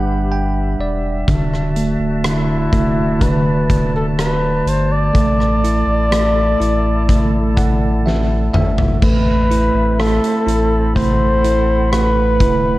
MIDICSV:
0, 0, Header, 1, 6, 480
1, 0, Start_track
1, 0, Tempo, 967742
1, 634, Time_signature, 4, 2, 24, 8
1, 6342, End_track
2, 0, Start_track
2, 0, Title_t, "Flute section"
2, 0, Program_c, 0, 73
2, 0, Note_on_c, 0, 67, 54
2, 0, Note_on_c, 0, 71, 49
2, 0, Note_on_c, 0, 76, 55
2, 0, Note_on_c, 0, 83, 58
2, 478, Note_off_c, 0, 71, 0
2, 507, Note_off_c, 0, 67, 0
2, 511, Note_off_c, 0, 83, 0
2, 632, Note_on_c, 0, 66, 54
2, 635, Note_on_c, 0, 81, 63
2, 636, Note_on_c, 0, 74, 53
2, 2409, Note_off_c, 0, 76, 0
2, 2534, Note_off_c, 0, 66, 0
2, 2553, Note_on_c, 0, 64, 56
2, 2553, Note_on_c, 0, 69, 52
2, 4347, Note_off_c, 0, 74, 0
2, 4351, Note_off_c, 0, 81, 0
2, 4352, Note_off_c, 0, 64, 0
2, 4454, Note_off_c, 0, 69, 0
2, 4474, Note_on_c, 0, 60, 57
2, 4475, Note_on_c, 0, 76, 52
2, 4475, Note_on_c, 0, 83, 62
2, 4478, Note_on_c, 0, 69, 54
2, 5425, Note_off_c, 0, 76, 0
2, 5432, Note_on_c, 0, 78, 60
2, 6243, Note_off_c, 0, 60, 0
2, 6342, Note_off_c, 0, 69, 0
2, 6342, Note_off_c, 0, 78, 0
2, 6342, Note_off_c, 0, 83, 0
2, 6342, End_track
3, 0, Start_track
3, 0, Title_t, "Flugelhorn"
3, 0, Program_c, 1, 56
3, 0, Note_on_c, 1, 67, 79
3, 397, Note_off_c, 1, 67, 0
3, 1128, Note_on_c, 1, 64, 73
3, 1600, Note_on_c, 1, 71, 79
3, 1607, Note_off_c, 1, 64, 0
3, 1957, Note_off_c, 1, 71, 0
3, 1963, Note_on_c, 1, 69, 71
3, 2015, Note_off_c, 1, 69, 0
3, 2080, Note_on_c, 1, 71, 82
3, 2325, Note_on_c, 1, 72, 80
3, 2332, Note_off_c, 1, 71, 0
3, 2442, Note_on_c, 1, 74, 95
3, 2449, Note_off_c, 1, 72, 0
3, 3998, Note_off_c, 1, 74, 0
3, 4482, Note_on_c, 1, 71, 86
3, 4958, Note_on_c, 1, 69, 84
3, 4966, Note_off_c, 1, 71, 0
3, 5432, Note_off_c, 1, 69, 0
3, 5435, Note_on_c, 1, 72, 96
3, 5895, Note_off_c, 1, 72, 0
3, 5914, Note_on_c, 1, 71, 95
3, 6342, Note_off_c, 1, 71, 0
3, 6342, End_track
4, 0, Start_track
4, 0, Title_t, "Tine electric piano"
4, 0, Program_c, 2, 4
4, 0, Control_c, 2, 64, 127
4, 0, Note_on_c, 2, 55, 43
4, 0, Note_on_c, 2, 62, 44
4, 0, Note_on_c, 2, 78, 58
4, 141, Note_off_c, 2, 78, 0
4, 157, Note_on_c, 2, 79, 57
4, 375, Note_off_c, 2, 62, 0
4, 379, Note_off_c, 2, 79, 0
4, 399, Note_on_c, 2, 74, 57
4, 615, Note_off_c, 2, 55, 0
4, 620, Note_off_c, 2, 74, 0
4, 634, Note_on_c, 2, 50, 55
4, 642, Control_c, 2, 64, 0
4, 733, Control_c, 2, 64, 127
4, 875, Note_on_c, 2, 57, 44
4, 1105, Note_off_c, 2, 50, 0
4, 1111, Note_on_c, 2, 50, 45
4, 1347, Note_off_c, 2, 57, 0
4, 1353, Note_on_c, 2, 57, 46
4, 1579, Note_off_c, 2, 50, 0
4, 1585, Note_on_c, 2, 50, 47
4, 2294, Note_off_c, 2, 57, 0
4, 2530, Note_off_c, 2, 50, 0
4, 2547, Note_on_c, 2, 57, 51
4, 2560, Control_c, 2, 64, 0
4, 2651, Control_c, 2, 64, 127
4, 2797, Note_on_c, 2, 64, 44
4, 3027, Note_off_c, 2, 57, 0
4, 3032, Note_on_c, 2, 57, 42
4, 3268, Note_off_c, 2, 64, 0
4, 3274, Note_on_c, 2, 64, 44
4, 3513, Note_off_c, 2, 57, 0
4, 3519, Note_on_c, 2, 57, 41
4, 3755, Note_on_c, 2, 78, 50
4, 3978, Note_off_c, 2, 78, 0
4, 3997, Note_on_c, 2, 76, 54
4, 4214, Note_off_c, 2, 64, 0
4, 4219, Note_off_c, 2, 76, 0
4, 4234, Note_on_c, 2, 76, 53
4, 4457, Note_off_c, 2, 57, 0
4, 4457, Note_off_c, 2, 76, 0
4, 4473, Note_on_c, 2, 57, 57
4, 4480, Control_c, 2, 64, 0
4, 4582, Control_c, 2, 64, 127
4, 4715, Note_on_c, 2, 64, 44
4, 4952, Note_off_c, 2, 57, 0
4, 4958, Note_on_c, 2, 57, 44
4, 5183, Note_off_c, 2, 64, 0
4, 5189, Note_on_c, 2, 64, 44
4, 5427, Note_off_c, 2, 57, 0
4, 5433, Note_on_c, 2, 57, 49
4, 5669, Note_off_c, 2, 64, 0
4, 5675, Note_on_c, 2, 64, 44
4, 5907, Note_off_c, 2, 57, 0
4, 5913, Note_on_c, 2, 57, 49
4, 6149, Note_off_c, 2, 64, 0
4, 6155, Note_on_c, 2, 64, 47
4, 6342, Note_off_c, 2, 57, 0
4, 6342, Note_off_c, 2, 64, 0
4, 6342, End_track
5, 0, Start_track
5, 0, Title_t, "Sub bass"
5, 0, Program_c, 3, 38
5, 0, Note_on_c, 3, 31, 81
5, 372, Note_off_c, 3, 31, 0
5, 389, Note_on_c, 3, 28, 78
5, 614, Note_off_c, 3, 28, 0
5, 634, Note_on_c, 3, 26, 98
5, 974, Note_off_c, 3, 26, 0
5, 987, Note_on_c, 3, 26, 77
5, 1331, Note_off_c, 3, 26, 0
5, 1353, Note_on_c, 3, 26, 81
5, 2294, Note_off_c, 3, 26, 0
5, 2310, Note_on_c, 3, 31, 78
5, 2535, Note_off_c, 3, 31, 0
5, 2552, Note_on_c, 3, 33, 90
5, 2893, Note_off_c, 3, 33, 0
5, 2909, Note_on_c, 3, 33, 85
5, 3252, Note_off_c, 3, 33, 0
5, 3274, Note_on_c, 3, 33, 86
5, 4214, Note_off_c, 3, 33, 0
5, 4233, Note_on_c, 3, 31, 72
5, 4457, Note_off_c, 3, 31, 0
5, 4475, Note_on_c, 3, 33, 94
5, 4815, Note_off_c, 3, 33, 0
5, 4830, Note_on_c, 3, 33, 87
5, 5055, Note_off_c, 3, 33, 0
5, 5189, Note_on_c, 3, 33, 80
5, 6153, Note_on_c, 3, 26, 80
5, 6160, Note_off_c, 3, 33, 0
5, 6342, Note_off_c, 3, 26, 0
5, 6342, End_track
6, 0, Start_track
6, 0, Title_t, "Drums"
6, 633, Note_on_c, 9, 42, 54
6, 634, Note_on_c, 9, 36, 80
6, 682, Note_off_c, 9, 42, 0
6, 683, Note_off_c, 9, 36, 0
6, 761, Note_on_c, 9, 37, 26
6, 811, Note_off_c, 9, 37, 0
6, 873, Note_on_c, 9, 42, 57
6, 922, Note_off_c, 9, 42, 0
6, 1111, Note_on_c, 9, 42, 86
6, 1113, Note_on_c, 9, 37, 98
6, 1161, Note_off_c, 9, 42, 0
6, 1163, Note_off_c, 9, 37, 0
6, 1352, Note_on_c, 9, 36, 78
6, 1353, Note_on_c, 9, 42, 52
6, 1402, Note_off_c, 9, 36, 0
6, 1403, Note_off_c, 9, 42, 0
6, 1593, Note_on_c, 9, 42, 71
6, 1594, Note_on_c, 9, 36, 76
6, 1642, Note_off_c, 9, 42, 0
6, 1643, Note_off_c, 9, 36, 0
6, 1834, Note_on_c, 9, 36, 74
6, 1835, Note_on_c, 9, 42, 68
6, 1884, Note_off_c, 9, 36, 0
6, 1884, Note_off_c, 9, 42, 0
6, 2076, Note_on_c, 9, 42, 71
6, 2077, Note_on_c, 9, 37, 82
6, 2126, Note_off_c, 9, 37, 0
6, 2126, Note_off_c, 9, 42, 0
6, 2318, Note_on_c, 9, 42, 60
6, 2367, Note_off_c, 9, 42, 0
6, 2554, Note_on_c, 9, 36, 78
6, 2554, Note_on_c, 9, 42, 59
6, 2604, Note_off_c, 9, 36, 0
6, 2604, Note_off_c, 9, 42, 0
6, 2679, Note_on_c, 9, 37, 27
6, 2729, Note_off_c, 9, 37, 0
6, 2799, Note_on_c, 9, 42, 57
6, 2849, Note_off_c, 9, 42, 0
6, 3035, Note_on_c, 9, 42, 87
6, 3037, Note_on_c, 9, 37, 100
6, 3085, Note_off_c, 9, 42, 0
6, 3087, Note_off_c, 9, 37, 0
6, 3281, Note_on_c, 9, 42, 54
6, 3331, Note_off_c, 9, 42, 0
6, 3517, Note_on_c, 9, 36, 77
6, 3521, Note_on_c, 9, 42, 76
6, 3567, Note_off_c, 9, 36, 0
6, 3571, Note_off_c, 9, 42, 0
6, 3757, Note_on_c, 9, 36, 75
6, 3760, Note_on_c, 9, 42, 63
6, 3806, Note_off_c, 9, 36, 0
6, 3810, Note_off_c, 9, 42, 0
6, 4003, Note_on_c, 9, 38, 41
6, 4053, Note_off_c, 9, 38, 0
6, 4236, Note_on_c, 9, 45, 69
6, 4286, Note_off_c, 9, 45, 0
6, 4355, Note_on_c, 9, 43, 72
6, 4405, Note_off_c, 9, 43, 0
6, 4474, Note_on_c, 9, 36, 90
6, 4475, Note_on_c, 9, 49, 71
6, 4524, Note_off_c, 9, 36, 0
6, 4524, Note_off_c, 9, 49, 0
6, 4718, Note_on_c, 9, 42, 60
6, 4767, Note_off_c, 9, 42, 0
6, 4956, Note_on_c, 9, 42, 81
6, 4958, Note_on_c, 9, 37, 94
6, 5006, Note_off_c, 9, 42, 0
6, 5008, Note_off_c, 9, 37, 0
6, 5077, Note_on_c, 9, 42, 53
6, 5127, Note_off_c, 9, 42, 0
6, 5199, Note_on_c, 9, 42, 57
6, 5248, Note_off_c, 9, 42, 0
6, 5436, Note_on_c, 9, 36, 76
6, 5440, Note_on_c, 9, 42, 83
6, 5486, Note_off_c, 9, 36, 0
6, 5490, Note_off_c, 9, 42, 0
6, 5675, Note_on_c, 9, 42, 70
6, 5725, Note_off_c, 9, 42, 0
6, 5916, Note_on_c, 9, 37, 92
6, 5916, Note_on_c, 9, 42, 68
6, 5966, Note_off_c, 9, 37, 0
6, 5966, Note_off_c, 9, 42, 0
6, 6153, Note_on_c, 9, 36, 84
6, 6155, Note_on_c, 9, 42, 66
6, 6202, Note_off_c, 9, 36, 0
6, 6205, Note_off_c, 9, 42, 0
6, 6342, End_track
0, 0, End_of_file